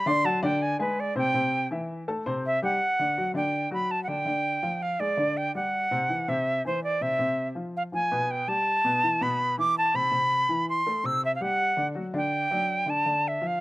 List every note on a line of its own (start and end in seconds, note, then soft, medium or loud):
0.06 0.21 D3 loud
0.06 0.21 D4 medium
0.06 0.22 D5 loud
0.06 0.27 C6 loud
0.24 0.39 F#3 medium
0.24 0.40 F#4 medium
0.24 0.40 F#5 medium
0.24 0.43 A5 loud
0.42 0.73 D3 loud
0.42 0.73 D4 medium
0.42 0.73 D5 loud
0.42 0.64 G5 loud
0.62 0.80 G#5 medium
0.79 1.09 G#3 medium
0.79 1.10 G#4 medium
0.79 1.01 B4 medium
0.79 1.10 G#5 medium
1.00 1.17 D5 medium
1.15 1.30 C3 medium
1.15 1.31 C4 medium
1.15 1.31 C5 medium
1.15 1.68 G5 loud
1.34 1.64 C3 medium
1.34 1.64 C4 medium
1.34 1.65 C5 medium
1.71 2.01 E3 medium
1.71 2.01 E4 medium
1.71 2.01 E5 medium
2.08 2.23 A3 medium
2.08 2.23 A4 medium
2.08 2.23 A5 medium
2.26 2.56 C3 medium
2.26 2.56 C4 medium
2.26 2.56 C5 loud
2.46 2.62 E5 loud
2.62 2.77 G3 medium
2.62 2.77 G4 medium
2.62 3.32 F#5 loud
2.62 2.78 G5 medium
2.99 3.14 D3 medium
2.99 3.14 D4 medium
3.18 3.32 F#3 medium
3.18 3.32 F#4 medium
3.34 3.64 D3 medium
3.34 3.65 D4 medium
3.34 3.70 G5 medium
3.71 4.01 F#3 medium
3.71 4.02 F#4 medium
3.71 3.92 B5 medium
3.91 4.02 A5 medium
4.03 4.10 F#5 medium
4.08 4.23 D3 medium
4.08 4.23 D4 medium
4.08 4.84 G5 medium
4.25 4.56 D3 medium
4.25 4.56 D4 medium
4.63 4.93 F3 medium
4.63 4.93 F4 medium
4.82 5.01 F5 medium
5.00 5.15 G#3 medium
5.00 5.15 G#4 medium
5.00 5.38 D5 medium
5.17 5.48 D3 medium
5.17 5.48 D4 medium
5.37 5.55 G5 medium
5.55 5.85 G3 medium
5.55 5.85 G4 medium
5.55 6.30 F#5 loud
5.91 6.06 C3 medium
5.91 6.06 C4 medium
6.09 6.24 E3 medium
6.09 6.24 E4 medium
6.28 6.58 C3 medium
6.28 6.58 C4 medium
6.28 6.65 E5 medium
6.65 6.95 E3 medium
6.65 6.95 E4 medium
6.65 6.82 C5 medium
6.84 7.03 D5 medium
7.01 7.16 C3 medium
7.01 7.16 C4 medium
7.01 7.48 E5 medium
7.19 7.49 C3 medium
7.19 7.49 C4 medium
7.55 7.86 F3 medium
7.55 7.86 F4 medium
7.77 7.83 F5 medium
7.92 8.07 F3 medium
7.92 8.08 F4 medium
7.92 8.32 G#5 medium
8.11 8.41 B2 medium
8.11 8.41 B3 medium
8.31 8.50 G5 medium
8.47 8.78 G3 medium
8.47 8.78 G4 medium
8.47 9.24 A5 loud
8.84 8.99 B2 medium
8.84 9.00 B3 medium
9.03 9.18 E3 medium
9.03 9.18 E4 medium
9.21 9.51 B2 medium
9.21 9.51 B3 medium
9.21 9.58 B5 medium
9.58 9.88 E3 medium
9.58 9.88 E4 medium
9.58 9.75 D6 loud
9.78 9.97 A5 loud
9.94 10.09 C3 medium
9.94 10.09 C4 medium
9.94 10.68 B5 loud
10.11 10.42 C3 medium
10.11 10.42 C4 medium
10.49 10.79 E3 medium
10.49 10.79 E4 medium
10.69 11.07 C6 medium
10.86 11.01 A3 medium
10.86 11.01 A4 medium
11.04 11.34 C3 medium
11.04 11.34 C4 medium
11.04 11.23 E6 loud
11.25 11.34 E5 loud
11.35 11.43 F5 medium
11.41 11.71 G3 medium
11.41 11.71 G4 medium
11.41 11.87 F#5 loud
11.77 11.92 D3 medium
11.77 11.92 D4 medium
11.95 12.10 F#3 medium
11.95 12.11 F#4 medium
12.14 12.44 D3 medium
12.14 12.44 D4 medium
12.14 12.91 G5 loud
12.51 12.81 F#3 medium
12.51 12.81 D4 medium
12.86 13.01 D3 medium
12.86 13.02 D4 medium
12.86 13.29 A5 medium
13.06 13.36 D3 medium
13.06 13.36 D4 medium
13.28 13.48 E5 medium
13.41 13.61 F3 medium
13.41 13.61 F4 medium
13.47 13.61 F5 medium